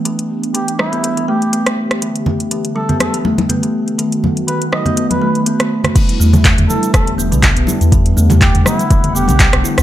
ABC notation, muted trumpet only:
X:1
M:4/4
L:1/16
Q:"Swing 16ths" 1/4=122
K:Em
V:1 name="Muted trumpet"
z4 G z E4 G4 z2 | z6 A2 A z6 z | z4 B z ^d3 B3 z4 | z6 A2 A z6 z |
z4 G z E4 G4 z2 |]